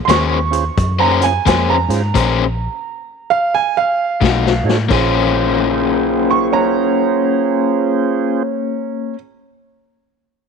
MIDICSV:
0, 0, Header, 1, 6, 480
1, 0, Start_track
1, 0, Key_signature, -5, "minor"
1, 0, Tempo, 689655
1, 1496, Time_signature, 4, 2, 24, 8
1, 7300, End_track
2, 0, Start_track
2, 0, Title_t, "Upright piano"
2, 0, Program_c, 0, 0
2, 35, Note_on_c, 0, 84, 74
2, 68, Note_on_c, 0, 85, 103
2, 69, Note_off_c, 0, 84, 0
2, 683, Note_off_c, 0, 85, 0
2, 698, Note_on_c, 0, 82, 92
2, 852, Note_off_c, 0, 82, 0
2, 860, Note_on_c, 0, 80, 92
2, 1013, Note_off_c, 0, 80, 0
2, 1028, Note_on_c, 0, 80, 82
2, 1177, Note_off_c, 0, 80, 0
2, 1183, Note_on_c, 0, 82, 88
2, 2298, Note_on_c, 0, 77, 103
2, 2452, Note_off_c, 0, 77, 0
2, 2467, Note_on_c, 0, 80, 107
2, 2591, Note_off_c, 0, 82, 0
2, 2616, Note_off_c, 0, 80, 0
2, 2625, Note_on_c, 0, 77, 104
2, 3225, Note_off_c, 0, 77, 0
2, 4389, Note_on_c, 0, 85, 83
2, 4538, Note_off_c, 0, 85, 0
2, 4543, Note_on_c, 0, 61, 79
2, 4547, Note_on_c, 0, 82, 90
2, 6356, Note_off_c, 0, 61, 0
2, 6358, Note_off_c, 0, 82, 0
2, 7300, End_track
3, 0, Start_track
3, 0, Title_t, "Tonewheel organ"
3, 0, Program_c, 1, 16
3, 352, Note_on_c, 1, 61, 72
3, 359, Note_on_c, 1, 65, 65
3, 364, Note_on_c, 1, 68, 62
3, 367, Note_on_c, 1, 72, 74
3, 445, Note_off_c, 1, 61, 0
3, 448, Note_off_c, 1, 65, 0
3, 450, Note_off_c, 1, 68, 0
3, 452, Note_off_c, 1, 72, 0
3, 832, Note_on_c, 1, 61, 71
3, 839, Note_on_c, 1, 65, 64
3, 843, Note_on_c, 1, 68, 64
3, 847, Note_on_c, 1, 72, 78
3, 924, Note_off_c, 1, 61, 0
3, 927, Note_off_c, 1, 65, 0
3, 930, Note_off_c, 1, 68, 0
3, 932, Note_off_c, 1, 72, 0
3, 1313, Note_on_c, 1, 61, 76
3, 1320, Note_on_c, 1, 65, 67
3, 1321, Note_on_c, 1, 68, 65
3, 1325, Note_on_c, 1, 72, 78
3, 1404, Note_off_c, 1, 61, 0
3, 1408, Note_off_c, 1, 65, 0
3, 1409, Note_off_c, 1, 68, 0
3, 1411, Note_off_c, 1, 72, 0
3, 3234, Note_on_c, 1, 63, 90
3, 3239, Note_on_c, 1, 66, 78
3, 3243, Note_on_c, 1, 69, 79
3, 3245, Note_on_c, 1, 73, 98
3, 3324, Note_off_c, 1, 63, 0
3, 3327, Note_off_c, 1, 66, 0
3, 3329, Note_off_c, 1, 69, 0
3, 3330, Note_off_c, 1, 73, 0
3, 3416, Note_on_c, 1, 61, 76
3, 3416, Note_on_c, 1, 68, 67
3, 3417, Note_on_c, 1, 65, 70
3, 3417, Note_on_c, 1, 72, 82
3, 5865, Note_off_c, 1, 61, 0
3, 5865, Note_off_c, 1, 68, 0
3, 5866, Note_off_c, 1, 65, 0
3, 5866, Note_off_c, 1, 72, 0
3, 7300, End_track
4, 0, Start_track
4, 0, Title_t, "Overdriven electric guitar"
4, 0, Program_c, 2, 29
4, 56, Note_on_c, 2, 58, 84
4, 59, Note_on_c, 2, 61, 82
4, 62, Note_on_c, 2, 68, 94
4, 64, Note_on_c, 2, 72, 90
4, 254, Note_off_c, 2, 58, 0
4, 255, Note_off_c, 2, 61, 0
4, 257, Note_off_c, 2, 68, 0
4, 258, Note_off_c, 2, 72, 0
4, 688, Note_on_c, 2, 72, 101
4, 692, Note_on_c, 2, 68, 88
4, 694, Note_on_c, 2, 61, 91
4, 698, Note_on_c, 2, 58, 75
4, 866, Note_off_c, 2, 72, 0
4, 868, Note_off_c, 2, 68, 0
4, 869, Note_off_c, 2, 61, 0
4, 871, Note_off_c, 2, 58, 0
4, 1014, Note_on_c, 2, 58, 81
4, 1017, Note_on_c, 2, 61, 87
4, 1020, Note_on_c, 2, 68, 83
4, 1020, Note_on_c, 2, 72, 97
4, 1212, Note_off_c, 2, 58, 0
4, 1214, Note_off_c, 2, 61, 0
4, 1215, Note_off_c, 2, 68, 0
4, 1215, Note_off_c, 2, 72, 0
4, 1492, Note_on_c, 2, 58, 91
4, 1498, Note_on_c, 2, 61, 95
4, 1499, Note_on_c, 2, 68, 90
4, 1502, Note_on_c, 2, 72, 97
4, 1691, Note_off_c, 2, 58, 0
4, 1694, Note_off_c, 2, 61, 0
4, 1695, Note_off_c, 2, 68, 0
4, 1696, Note_off_c, 2, 72, 0
4, 2928, Note_on_c, 2, 47, 83
4, 2929, Note_on_c, 2, 57, 92
4, 2934, Note_on_c, 2, 63, 83
4, 2936, Note_on_c, 2, 66, 97
4, 3129, Note_off_c, 2, 47, 0
4, 3129, Note_off_c, 2, 57, 0
4, 3132, Note_off_c, 2, 63, 0
4, 3133, Note_off_c, 2, 66, 0
4, 3401, Note_on_c, 2, 58, 85
4, 3412, Note_on_c, 2, 61, 88
4, 3422, Note_on_c, 2, 68, 97
4, 3431, Note_on_c, 2, 72, 102
4, 6373, Note_off_c, 2, 58, 0
4, 6378, Note_off_c, 2, 61, 0
4, 6383, Note_off_c, 2, 68, 0
4, 6388, Note_off_c, 2, 72, 0
4, 7300, End_track
5, 0, Start_track
5, 0, Title_t, "Fingered electric bass"
5, 0, Program_c, 3, 33
5, 55, Note_on_c, 3, 39, 90
5, 476, Note_off_c, 3, 39, 0
5, 539, Note_on_c, 3, 42, 91
5, 958, Note_off_c, 3, 42, 0
5, 1020, Note_on_c, 3, 41, 93
5, 1284, Note_off_c, 3, 41, 0
5, 1313, Note_on_c, 3, 44, 89
5, 1470, Note_off_c, 3, 44, 0
5, 1498, Note_on_c, 3, 34, 93
5, 1855, Note_off_c, 3, 34, 0
5, 2936, Note_on_c, 3, 35, 90
5, 3201, Note_off_c, 3, 35, 0
5, 3230, Note_on_c, 3, 45, 90
5, 3388, Note_off_c, 3, 45, 0
5, 3413, Note_on_c, 3, 34, 89
5, 6351, Note_off_c, 3, 34, 0
5, 7300, End_track
6, 0, Start_track
6, 0, Title_t, "Drums"
6, 60, Note_on_c, 9, 42, 90
6, 73, Note_on_c, 9, 38, 111
6, 130, Note_off_c, 9, 42, 0
6, 143, Note_off_c, 9, 38, 0
6, 367, Note_on_c, 9, 42, 66
6, 437, Note_off_c, 9, 42, 0
6, 540, Note_on_c, 9, 36, 113
6, 540, Note_on_c, 9, 42, 86
6, 610, Note_off_c, 9, 36, 0
6, 610, Note_off_c, 9, 42, 0
6, 846, Note_on_c, 9, 42, 68
6, 915, Note_off_c, 9, 42, 0
6, 1019, Note_on_c, 9, 36, 85
6, 1020, Note_on_c, 9, 42, 95
6, 1033, Note_on_c, 9, 38, 111
6, 1089, Note_off_c, 9, 36, 0
6, 1090, Note_off_c, 9, 42, 0
6, 1102, Note_off_c, 9, 38, 0
6, 1323, Note_on_c, 9, 42, 64
6, 1335, Note_on_c, 9, 38, 32
6, 1392, Note_off_c, 9, 42, 0
6, 1405, Note_off_c, 9, 38, 0
6, 1498, Note_on_c, 9, 36, 104
6, 1498, Note_on_c, 9, 42, 85
6, 1498, Note_on_c, 9, 49, 78
6, 1567, Note_off_c, 9, 36, 0
6, 1567, Note_off_c, 9, 42, 0
6, 1567, Note_off_c, 9, 49, 0
6, 2935, Note_on_c, 9, 36, 93
6, 2949, Note_on_c, 9, 38, 92
6, 3005, Note_off_c, 9, 36, 0
6, 3018, Note_off_c, 9, 38, 0
6, 3108, Note_on_c, 9, 38, 75
6, 3178, Note_off_c, 9, 38, 0
6, 3266, Note_on_c, 9, 38, 101
6, 3336, Note_off_c, 9, 38, 0
6, 3414, Note_on_c, 9, 36, 105
6, 3415, Note_on_c, 9, 49, 82
6, 3484, Note_off_c, 9, 36, 0
6, 3484, Note_off_c, 9, 49, 0
6, 7300, End_track
0, 0, End_of_file